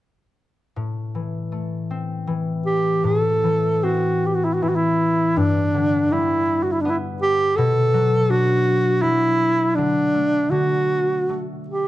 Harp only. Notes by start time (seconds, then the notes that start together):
0.76 A2
1.15 E3
1.52 A3
1.91 C4
2.27 E3
3.04 A2
3.44 E3
3.83 C4
4.62 E3
5.36 G2
5.74 D3
6.12 G3
6.85 B3
7.58 B2
7.94 F#3
8.30 D4
9.03 F#3
9.78 D3
10.14 A3
10.51 D3
11.29 A3